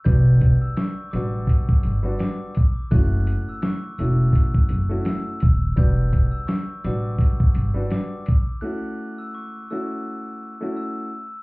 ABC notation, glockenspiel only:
X:1
M:4/4
L:1/16
Q:"Swing 16ths" 1/4=84
K:Edor
V:1 name="Glockenspiel"
g'3 e' c'2 d'6 d'2 z2 | f'3 e' c'2 e'6 e'2 z2 | g'3 e' c'2 d'6 d'2 z2 | f'3 e' c'2 e'6 e'2 z2 |]